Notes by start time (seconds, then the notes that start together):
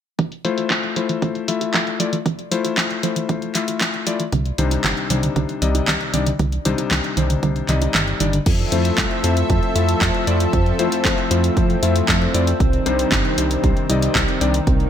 0.19 E3, kick, closed hi-hat
0.32 closed hi-hat
0.45 F3 A3 E4 F4 C5, closed hi-hat
0.58 F4, closed hi-hat
0.70 F3, kick, clap, closed hi-hat
0.83 closed hi-hat
0.96 F3 A3 E4 F4 C5, closed hi-hat
1.09 E3, closed hi-hat
1.22 E3, kick, closed hi-hat
1.35 closed hi-hat
1.48 F3 A3 E4 F4 E5, closed hi-hat
1.61 F4, closed hi-hat
1.74 F3, kick, clap, closed hi-hat
1.87 closed hi-hat
2.00 F3 A3 E4 F4 D5, closed hi-hat
2.13 E3, closed hi-hat
2.26 E3, kick, closed hi-hat
2.39 closed hi-hat
2.51 F3 A3 E4 F4 C5, closed hi-hat
2.64 F4, closed hi-hat
2.77 F3, kick, clap, closed hi-hat
2.90 closed hi-hat
3.03 F3 A3 E4 F4 C5, closed hi-hat
3.16 E3, closed hi-hat
3.29 E3, kick, closed hi-hat
3.42 closed hi-hat
3.55 F3 A3 E4 F4 E5, clap, closed hi-hat
3.68 F4, closed hi-hat
3.81 F3, kick, clap, closed hi-hat
3.94 closed hi-hat
4.07 F3 A3 E4 F4 D5, closed hi-hat
4.20 E3, closed hi-hat
4.32 C2 D3, kick, closed hi-hat
4.45 closed hi-hat
4.58 C2 C3 D#3 G3 D4 D#4 C5, closed hi-hat
4.71 D#4, closed hi-hat
4.84 G1 D#3, kick, clap, closed hi-hat
4.97 closed hi-hat
5.10 C2 C3 D#3 G3 D4 D#4 C5, closed hi-hat
5.23 D3, closed hi-hat
5.36 C2 D3, kick, closed hi-hat
5.49 closed hi-hat
5.62 C2 C3 D#3 G3 D#4 D5 D#5, closed hi-hat
5.75 D#4, closed hi-hat
5.88 C2 D#3, kick, clap, closed hi-hat
6.01 closed hi-hat
6.13 C2 C3 D#3 G3 D4 D#4 D5, closed hi-hat
6.26 D3, closed hi-hat
6.39 C2 D3, kick, closed hi-hat
6.52 closed hi-hat
6.65 C2 C3 D#3 G3 D4 D#4 C5, closed hi-hat
6.78 D#4, closed hi-hat
6.91 C2 D#3, kick, clap, closed hi-hat
7.04 closed hi-hat
7.17 C2 C3 D#3 G3 D4 D#4 C5, closed hi-hat
7.30 D3, closed hi-hat
7.43 C2 D3, kick, closed hi-hat
7.56 closed hi-hat
7.69 C2 C3 D#3 G3 D#4 D5 D#5, clap, closed hi-hat
7.82 D#4, closed hi-hat
7.94 G1 D#3, kick, clap, closed hi-hat
8.07 closed hi-hat
8.20 G1 D#3 G3 D4 D#4 D5, closed hi-hat
8.33 D3, closed hi-hat
8.46 F2 F3 C4 A4 E5, kick, closed hi-hat, crash
8.59 closed hi-hat
8.72 F2 A3 E4 F4 C5, closed hi-hat
8.85 closed hi-hat
8.98 C2, kick, clap, closed hi-hat
9.11 closed hi-hat
9.24 F2 A3 E4 F4 C5, closed hi-hat
9.37 closed hi-hat
9.50 F2, kick, closed hi-hat
9.63 closed hi-hat
9.76 F2 A3 E4 F4 E5, closed hi-hat
9.89 closed hi-hat
10.02 F2, kick, clap, closed hi-hat
10.14 closed hi-hat
10.27 F2 A3 E4 F4 D5, closed hi-hat
10.40 closed hi-hat
10.53 F2, kick, closed hi-hat
10.66 closed hi-hat
10.79 F2 A3 E4 F4 C5, closed hi-hat
10.92 closed hi-hat
11.05 F2, kick, clap, closed hi-hat
11.18 closed hi-hat
11.31 F2 A3 E4 F4 C5, closed hi-hat
11.44 closed hi-hat
11.57 F2, kick, closed hi-hat
11.70 closed hi-hat
11.83 F2 A3 E4 F4 E5, closed hi-hat
11.96 closed hi-hat
12.08 F2, kick, clap, closed hi-hat
12.22 closed hi-hat
12.34 F2 A3 E4 F4 D5, closed hi-hat
12.47 closed hi-hat
12.60 C2 D#3, kick, closed hi-hat
12.73 closed hi-hat
12.86 C2 C3 G3 D4 D#4 C5, closed hi-hat
12.99 closed hi-hat
13.12 G1, kick, clap, closed hi-hat
13.25 closed hi-hat
13.38 C2 C3 G3 D4 D#4 C5, closed hi-hat
13.51 closed hi-hat
13.64 C2, kick, closed hi-hat
13.77 closed hi-hat
13.89 C2 C3 G3 D#4 D5 D#5, closed hi-hat
14.02 closed hi-hat
14.15 C2, kick, clap, closed hi-hat
14.28 closed hi-hat
14.41 C2 C3 G3 D4 D#4 D5, closed hi-hat
14.54 closed hi-hat
14.67 C2 A#3, kick, closed hi-hat
14.80 closed hi-hat